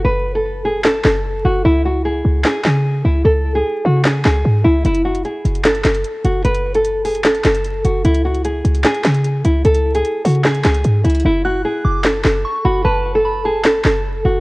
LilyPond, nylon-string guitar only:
\new Staff \with { instrumentName = "Nylon-string guitar" } { \time 4/4 \key fis \minor \tempo 4 = 150 b'8. a'8. gis'8 a'8 a'4 fis'8 | e'8 fis'8 gis'4 gis'8 gis'4 e'8 | a'8. gis'8. fis'8 gis'8 gis'4 e'8 | e'8 fis'8 gis'4 a'8 a'4 fis'8 |
b'8. a'8. gis'8 a'8 a'4 fis'8 | e'8 fis'8 gis'4 gis'8 gis'4 e'8 | a'8. gis'8. fis'8 gis'8 gis'4 e'8 | e'8 fis'8 gis'4 a'8 a'4 fis'8 |
b'8. a'8. gis'8 a'8 a'4 fis'8 | }